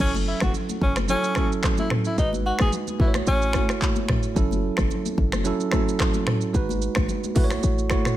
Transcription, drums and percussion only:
0.00 kick, crash, shaker
0.15 high conga, shaker
0.40 finger snap, kick, cross-stick, high conga, shaker
0.54 low conga, shaker
0.69 high conga, shaker
0.81 kick, low conga
0.96 finger snap, cross-stick, high conga, shaker
1.08 low conga, shaker
1.24 shaker
1.35 finger snap, kick, cross-stick, high conga, shaker
1.52 shaker
1.63 finger snap, kick, cross-stick, clap, high conga, shaker
1.77 high conga, shaker
1.90 finger snap, cross-stick, mid tom, low conga
2.05 shaker
2.18 kick, shaker
2.33 high conga, shaker
2.59 finger snap, cross-stick, high conga, shaker
2.72 low conga, shaker
2.87 high conga, shaker
3.00 kick, low conga
3.14 finger snap, cross-stick, high conga, shaker
3.27 low conga, shaker
3.42 shaker
3.53 finger snap, kick, cross-stick, high conga, shaker
3.69 finger snap, cross-stick, shaker
3.82 kick, clap, high conga, shaker
3.96 high conga, shaker
4.09 finger snap, kick, cross-stick, mid tom, low conga
4.23 shaker
4.36 kick, shaker
4.51 high conga, shaker
4.77 finger snap, kick, cross-stick, high conga, shaker
4.90 low conga, shaker
5.06 high conga, shaker
5.18 kick, low conga
5.32 finger snap, cross-stick, high conga, shaker
5.45 low conga, shaker
5.60 shaker
5.71 finger snap, kick, cross-stick, high conga, shaker
5.89 shaker
6.00 finger snap, kick, cross-stick, clap, high conga, shaker
6.14 high conga, shaker
6.27 finger snap, cross-stick, mid tom, low conga
6.41 shaker
6.55 kick, shaker
6.69 high conga, shaker
6.82 shaker
6.95 finger snap, kick, cross-stick, high conga, shaker
7.08 low conga, shaker
7.24 high conga, shaker
7.36 kick, open hi-hat, low conga, shaker
7.50 finger snap, cross-stick, high conga, shaker
7.63 low conga, shaker
7.78 shaker
7.90 finger snap, kick, cross-stick, high conga, shaker
8.05 finger snap, cross-stick, mid tom, shaker

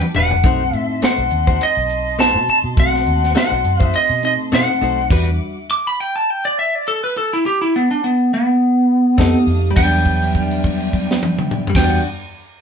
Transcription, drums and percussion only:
0.02 high tom
0.15 mid tom
0.31 floor tom
0.43 kick, closed hi-hat
0.73 closed hi-hat
1.02 snare, closed hi-hat
1.31 closed hi-hat
1.47 kick
1.61 closed hi-hat
1.90 closed hi-hat
2.19 snare, closed hi-hat
2.49 closed hi-hat
2.77 kick, closed hi-hat
2.94 snare
3.06 closed hi-hat
3.23 snare
3.35 snare, closed hi-hat
3.65 closed hi-hat
3.80 kick
3.94 closed hi-hat
4.23 closed hi-hat
4.52 snare, closed hi-hat
4.82 closed hi-hat
5.10 kick, closed hi-hat, crash
9.18 kick, snare, closed hi-hat
9.48 open hi-hat
9.77 kick, crash
10.05 kick, crash
10.22 crash
10.35 kick, crash
10.51 crash
10.64 kick, crash
10.80 crash
10.93 kick, crash
11.11 snare
11.23 high tom
11.39 mid tom
11.51 mid tom
11.67 floor tom
11.75 kick, snare, crash

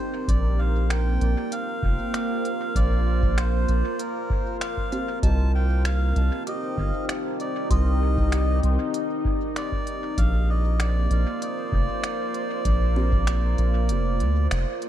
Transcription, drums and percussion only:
0.28 kick, closed hi-hat
0.90 finger snap, closed hi-hat
1.21 closed hi-hat
1.52 closed hi-hat
1.83 kick
2.14 finger snap, closed hi-hat
2.45 closed hi-hat
2.75 kick, closed hi-hat
3.23 kick
3.38 finger snap, closed hi-hat
3.69 closed hi-hat
3.99 closed hi-hat
4.30 kick
4.61 finger snap, closed hi-hat
4.77 kick
4.92 closed hi-hat
5.23 kick, closed hi-hat
5.85 finger snap, closed hi-hat
6.16 closed hi-hat
6.47 closed hi-hat
6.78 kick
7.09 finger snap, closed hi-hat
7.40 closed hi-hat
7.70 kick, closed hi-hat
8.18 kick
8.32 finger snap, closed hi-hat
8.63 closed hi-hat
8.94 closed hi-hat
9.25 kick
9.56 finger snap, closed hi-hat
9.72 kick
9.87 closed hi-hat
10.18 kick, closed hi-hat
10.80 finger snap, closed hi-hat
11.11 closed hi-hat
11.42 closed hi-hat
11.72 kick
12.04 finger snap, closed hi-hat
12.34 closed hi-hat
12.65 kick, closed hi-hat
13.12 kick
13.27 finger snap, closed hi-hat
13.58 closed hi-hat
13.89 closed hi-hat
14.20 closed hi-hat
14.51 finger snap, closed hi-hat
14.82 closed hi-hat

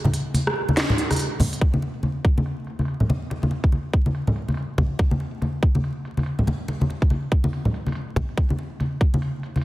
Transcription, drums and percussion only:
0.04 high conga, low conga
0.14 closed hi-hat
0.34 closed hi-hat, high conga
0.47 cross-stick
0.69 high conga
0.77 snare, closed hi-hat
0.90 low conga
0.98 closed hi-hat
1.11 cross-stick, closed hi-hat, high conga
1.12 closed hi-hat
1.16 closed hi-hat
1.19 closed hi-hat
1.40 open hi-hat, high conga, low conga
1.53 closed hi-hat
1.61 kick, muted conga
1.74 high conga
1.82 closed hi-hat, muted conga
2.03 closed hi-hat, high conga
2.25 kick
2.38 high conga
2.46 closed hi-hat
2.67 closed hi-hat
2.79 closed hi-hat, high conga
2.81 closed hi-hat
2.85 closed hi-hat
2.88 closed hi-hat
3.00 low conga
3.09 closed hi-hat, muted conga, high conga
3.30 closed hi-hat, muted conga
3.43 high conga
3.51 closed hi-hat, muted conga
3.64 kick
3.72 closed hi-hat, high conga
3.94 kick
4.06 high conga
4.15 closed hi-hat
4.27 low conga
4.36 closed hi-hat
4.48 closed hi-hat, high conga
4.50 closed hi-hat
4.54 closed hi-hat
4.57 closed hi-hat
4.78 kick, closed hi-hat, muted conga, high conga, low conga
4.99 kick, muted conga
5.11 high conga
5.20 closed hi-hat, muted conga
5.42 closed hi-hat, high conga
5.63 kick
5.75 high conga
5.84 closed hi-hat
6.05 closed hi-hat
6.17 closed hi-hat, high conga
6.19 closed hi-hat
6.23 closed hi-hat
6.26 closed hi-hat
6.39 low conga
6.47 closed hi-hat, muted conga, high conga
6.68 closed hi-hat, muted conga
6.81 high conga
6.90 closed hi-hat, muted conga
7.02 kick
7.10 closed hi-hat, high conga
7.32 kick
7.44 high conga
7.53 closed hi-hat
7.65 low conga
7.74 closed hi-hat
7.87 closed hi-hat, high conga
7.88 closed hi-hat
7.92 closed hi-hat
7.95 closed hi-hat
8.16 kick, closed hi-hat, muted conga, high conga, low conga
8.29 closed hi-hat
8.37 kick, closed hi-hat, muted conga
8.50 high conga
8.59 closed hi-hat, muted conga
8.80 closed hi-hat, high conga
9.01 kick
9.14 high conga
9.22 closed hi-hat
9.43 closed hi-hat
9.56 closed hi-hat, high conga
9.57 closed hi-hat

